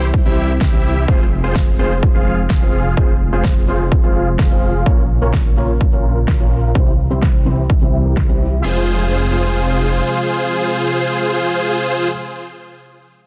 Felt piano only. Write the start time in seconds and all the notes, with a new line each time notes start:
Already playing: C3 G3 C4 E4 C5
0.25 C3 G3 C4 E4 C5
0.72 C3 G3 C4 E4 C5
1.08 G#3 C4 F4 C5
1.43 G#3 C4 F4 C5
1.78 G#3 C4 F4 C5
2.14 G#3 C4 F4 C5
2.61 G#3 C4 F4 C5
2.97 G#3 C4 F4 C5
3.32 G#3 C4 F4 C5
3.68 G#3 C4 F4 C5
4.03 G#3 C4 F4 C5
4.50 G#3 C4 F4 C5
4.86 A#2 A#3 C#4 F4 C#5
5.21 A#2 A#3 C#4 F4 C#5
5.57 A#2 A#3 C#4 F4 C#5
5.92 A#2 A#3 C#4 F4 C#5
6.39 A#2 A#3 C#4 F4 C#5
6.75 C3 G3 C4 E4 C5
7.10 C3 G3 C4 E4 C5
7.46 C3 G3 C4 E4 C5
7.81 C3 G3 C4 E4 C5
8.28 C3 G3 C4 E4 C5
8.62 G#3 C4 F4 C5